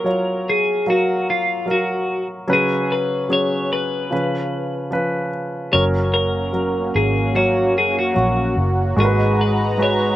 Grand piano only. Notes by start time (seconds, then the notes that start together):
Already playing: F#3 F4 A#4
0.04 F#3 F4 C#5
0.86 F#3 A#4 F5
1.66 F#3 A#4 F5
2.48 C#3 F#3 C#4 B4
3.29 F#3 C#4 G#4
4.10 C#3 F3 C#4 B4
4.91 F3 C#4 B4
5.72 F#3 C#4 A#4
6.53 F#3 C#4 A#4
7.34 F#3 C#4 C#5
8.14 F#3 C#4 F#4
8.96 G#2 G#3 F#4 A#4
9.05 B4
9.78 G#3 F#4 B4